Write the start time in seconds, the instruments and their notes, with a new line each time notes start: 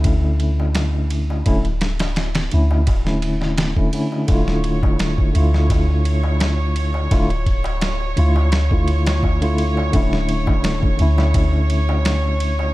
Already playing: 808-style bass D2, tine electric piano D3 A3 C#4 E4
0.04 kick, ride, darbuka tek
0.24 darbuka tek
0.40 ride
0.60 darbuka tek
0.75 snare, ride, darbuka tek
0.95 darbuka tek
1.10 ride
1.30 darbuka tek
1.46 808-style bass D1, tine electric piano D3 A3 C#4 E4, kick, ride, darbuka tek
1.65 ride, darbuka tek
1.81 snare, ride
1.99 snare, ride, darbuka tek
2.16 snare, ride, darbuka tek
2.35 snare, ride, darbuka tek
2.51 808-style bass D2, tine electric piano D3 A3 C#4 E4, ride
2.71 darbuka tek
2.87 808-style bass D1, kick, ride, darbuka tek
3.05 tine electric piano D3 A3 C#4 E4, snare, darbuka tek
3.22 ride
3.41 snare, darbuka tek
3.58 snare, ride, darbuka tek
3.76 tine electric piano D3 A3 C#4 E4, kick, darbuka tek
3.93 tine electric piano D3 A3 C#4 E4, ride
4.12 darbuka tek
4.27 808-style bass D1, tine electric piano D3 A3 E4, violin section C#5, kick, ride, darbuka tek
4.32 tine electric piano F4
4.48 snare, darbuka tek
4.64 ride
4.83 kick, darbuka tek
4.99 snare, ride, darbuka tek
5.18 kick, darbuka tek
5.33 808-style bass D2, tine electric piano D3 A3 E4, ride
5.37 tine electric piano F4
5.54 snare, darbuka tek
5.70 kick, ride, darbuka tek
5.89 darbuka tek
6.05 ride
6.24 darbuka tek
6.40 snare, ride, darbuka tek
6.60 darbuka tek
6.76 ride
6.94 darbuka tek
7.11 808-style bass D1, tine electric piano D3 A3 E4 F4, kick, ride, darbuka tek
7.30 ride, darbuka tek
7.46 kick, ride
7.64 ride, darbuka tek
7.81 snare, ride, darbuka tek
8.00 darbuka tek
8.17 808-style bass D2, tine electric piano D3 A3 E4 F4, ride
8.36 darbuka tek
8.52 snare, ride, darbuka tek
8.71 tine electric piano D3 A3 E4 F4, kick, darbuka tek
8.88 ride
9.06 snare, ride, darbuka tek
9.23 kick, darbuka tek
9.42 tine electric piano D3 A3 E4 F4, ride, darbuka tek
9.58 ride
9.77 darbuka tek
9.92 808-style bass D1, tine electric piano D3 A3 C#4, kick, ride, darbuka tek
9.96 tine electric piano E4
10.13 snare, darbuka tek
10.29 ride
10.47 kick, darbuka tek
10.64 snare, ride, darbuka tek
10.83 kick, darbuka tek
10.97 808-style bass D2, tine electric piano D3 A3 C#4, ride
11.02 tine electric piano E4
11.18 snare, darbuka tek
11.34 kick, ride, darbuka tek
11.54 darbuka tek
11.70 ride
11.89 darbuka tek
12.05 snare, ride, darbuka tek
12.24 darbuka tek
12.40 ride
12.59 darbuka tek